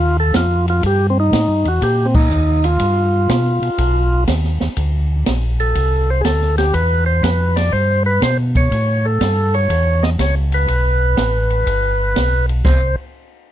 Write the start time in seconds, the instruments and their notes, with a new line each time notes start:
Already playing: tonewheel organ D#2 F4
0.20 tonewheel organ A4
0.34 tonewheel organ F2 F4, kick, snare, hi-hat pedal, ride
0.68 tonewheel organ F4, ride
0.83 tonewheel organ G2 G4, kick, ride
1.10 tonewheel organ C4
1.20 tonewheel organ D#4
1.32 tonewheel organ A2, kick, snare, hi-hat pedal, ride
1.48 tonewheel organ G2
1.65 tonewheel organ E2 F#4, ride
1.82 tonewheel organ A#2 G4, kick, ride
2.05 tonewheel organ C4
2.15 tonewheel organ D#4, kick, crash
2.30 tonewheel organ D#2, hi-hat pedal
2.64 tonewheel organ F4, ride
2.79 tonewheel organ G2, kick, ride
3.29 tonewheel organ B2, kick, snare, hi-hat pedal, ride
3.62 tonewheel organ B2, ride
3.78 tonewheel organ B1, kick, ride
4.27 tonewheel organ D#2, kick, snare, hi-hat pedal, ride
4.44 snare
4.60 tonewheel organ D#2, snare
4.77 tonewheel organ D2, kick, ride
5.26 tonewheel organ A#1, kick, snare, hi-hat pedal, ride
5.60 tonewheel organ A4, ride
5.75 tonewheel organ C2, kick, ride
6.10 tonewheel organ C5
6.21 tonewheel organ D2 G#4, kick, snare, hi-hat pedal, ride
6.25 tonewheel organ A4
6.41 snare
6.58 tonewheel organ G4, snare, ride
6.74 tonewheel organ E2 B4, kick, ride
7.06 tonewheel organ C5
7.23 tonewheel organ F2 B4, kick, snare, hi-hat pedal, ride
7.56 tonewheel organ D5, snare, ride
7.72 tonewheel organ G2 C5, kick
8.06 tonewheel organ B4
8.22 tonewheel organ B2 C5, kick, snare, hi-hat pedal, ride
8.55 tonewheel organ C#5, kick, ride
8.71 tonewheel organ A2, kick, ride
9.05 tonewheel organ A4
9.21 tonewheel organ G2, kick, snare, hi-hat pedal, ride
9.54 tonewheel organ C#5, ride
9.70 tonewheel organ E2, kick, ride
10.03 tonewheel organ D#5, snare
10.19 tonewheel organ C#2 C#5, kick, snare, hi-hat pedal, ride
10.52 tonewheel organ B4, ride
10.68 tonewheel organ B1, kick, ride
11.17 tonewheel organ A1, kick, snare, hi-hat pedal, ride
11.50 ride
11.66 tonewheel organ G1, kick, ride
12.16 tonewheel organ B1, kick, snare, hi-hat pedal, ride
12.49 ride
12.64 tonewheel organ C2 C5, kick, snare, crash